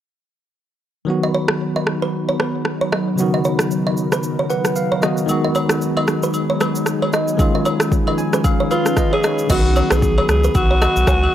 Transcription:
1.05 D#3 F#3 B3 D#4
1.10 F#4
1.23 D#5
1.34 C#5
1.48 cross-stick
1.76 D#5
1.87 cross-stick
2.02 B4
2.29 C#5
2.40 B4, cross-stick
2.65 cross-stick
2.81 C#5
2.92 D#5, cross-stick
3.16 C#3 F#3 B3 A#4, shaker
3.21 D#3 F#4
3.34 D#5
3.44 C#5, shaker
3.59 cross-stick, shaker
3.71 shaker
3.87 D#5
3.97 shaker
4.12 B4, cross-stick, shaker
4.23 shaker
4.39 C#5
4.50 B4 F#5, shaker
4.65 cross-stick, shaker
4.76 F5, shaker
4.92 C#5
5.01 D#3 F#3 B3 F#4 D#5, cross-stick, shaker
5.17 shaker
5.26 D#3 F#3 G#3 B3 G#4, high agogo, shaker
5.31 F#4
5.44 D#5
5.55 C#5, high agogo, shaker
5.69 cross-stick, shaker
5.82 shaker
5.97 D#5, high agogo
6.08 cross-stick, shaker
6.23 B4, shaker
6.34 high agogo, shaker
6.50 C#5
6.61 B4, cross-stick, high agogo, shaker
6.75 shaker
6.86 cross-stick, shaker
7.02 C#5, high agogo
7.13 D#5, cross-stick, shaker
7.28 shaker
7.37 D#3 F3 G#3 C#4, kick, high agogo, shaker
7.41 F4
7.55 D#5
7.65 C#5, high agogo, shaker
7.80 cross-stick, shaker
7.92 kick, shaker
8.07 D#5, high agogo
8.18 G#5, shaker
8.33 B4, cross-stick, shaker
8.44 F5, kick, high agogo, shaker
8.60 C#5
8.71 F4 B4 F5, high agogo, shaker
8.86 cross-stick, shaker
8.97 D#5, kick, cross-stick, shaker
9.13 G#4 C#5, high agogo
9.23 C#5 D#5, cross-stick, shaker
9.38 shaker
9.47 B1 D#3 F#3 B3 F#4 B4 D#5 D#6, kick, crash, high agogo, shaker
9.52 F#4
9.76 C#5, high agogo, shaker
9.90 B1 G#4 B4, cross-stick, shaker
10.02 kick, shaker
10.18 C#5, high agogo
10.29 C#2 G#4, cross-stick, shaker
10.44 B4, shaker
10.55 B1 F#4, kick, high agogo, shaker
10.71 C#5
10.82 D#5, cross-stick, high agogo, shaker
10.96 B1, shaker
11.07 C#2 C#5, kick, cross-stick, low woodblock, shaker
11.23 high agogo

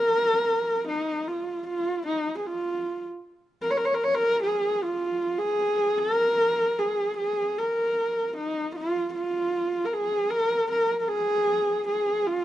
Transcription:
Already playing: A#4
0.88 D#4
1.27 F4
1.67 F4
2.07 D#4
2.37 G#4
2.46 F4
3.62 A#4
3.70 C#5
3.77 A#4
3.85 C#5
3.94 A#4
4.04 C#5
4.15 A#4
4.43 G#4
4.83 F4
5.39 G#4
5.99 A#4
6.79 G#4
7.17 G#4
7.58 A#4
8.37 D#4
8.76 F4
9.14 F4
9.85 A#4
9.94 G#4
10.30 A#4
10.71 A#4
10.99 A#4
11.08 G#4
11.88 G#4
12.26 F4

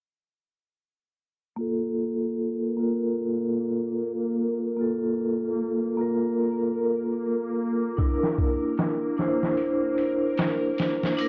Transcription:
1.56 A#3 F4 A#4
1.61 A4
2.77 A#3 F4 A#4
4.76 A#3 F4
4.81 A4
5.97 A#3 F4
6.01 A#4
7.97 D4 E4, kick, open hi-hat
8.02 A#4
8.23 snare
8.38 kick, open hi-hat
8.77 snare, open hi-hat
9.17 D4 E4, snare, open hi-hat
9.21 C5
9.43 snare
9.57 open hi-hat
9.98 open hi-hat
10.38 snare, open hi-hat
10.78 snare, open hi-hat
11.03 snare
11.17 D4 E4 A#4, open hi-hat

